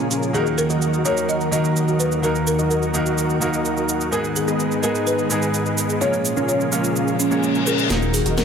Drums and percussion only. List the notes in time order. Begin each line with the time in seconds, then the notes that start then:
0.11 shaker
0.23 shaker
0.34 shaker
0.46 shaker
0.58 shaker
0.70 shaker
0.82 shaker
0.94 shaker
1.05 shaker
1.17 shaker
1.29 shaker
1.41 shaker
1.53 shaker
1.64 shaker
1.76 shaker
1.88 shaker
2.00 shaker
2.12 shaker
2.24 shaker
2.35 shaker
2.47 shaker
2.59 shaker
2.71 shaker
2.83 shaker
2.94 shaker
3.06 shaker
3.18 shaker
3.30 shaker
3.42 shaker
3.53 shaker
3.65 shaker
3.77 shaker
3.89 shaker
4.01 shaker
4.13 shaker
4.24 shaker
4.36 shaker
4.48 shaker
4.60 shaker
4.72 shaker
4.83 shaker
4.95 shaker
5.07 shaker
5.19 shaker
5.30 shaker
5.42 shaker
5.54 shaker
5.66 shaker
5.78 shaker
5.90 shaker
6.01 shaker
6.13 shaker
6.25 shaker
6.37 shaker
6.49 shaker
6.61 shaker
6.72 shaker
6.84 shaker
6.96 shaker
7.08 shaker
7.20 shaker
7.31 shaker
7.43 shaker
7.55 shaker
7.67 shaker
7.79 shaker
7.90 snare, closed hi-hat, shaker
8.02 shaker
8.14 open hi-hat, shaker
8.26 closed hi-hat, shaker
8.38 snare, closed hi-hat, shaker